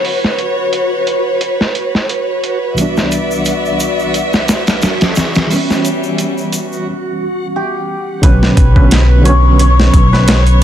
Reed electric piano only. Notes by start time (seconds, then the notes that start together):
Already playing: D3 F#3 B3 C#4
2.74 C2 E3 G3
2.80 B3 D4
5.47 E3 G3
5.52 B3 C#4
8.22 D3 F#3 B3 C#4
8.75 D3 F#3 B3 C#4
9.22 D3 F#3
9.27 B3 C#4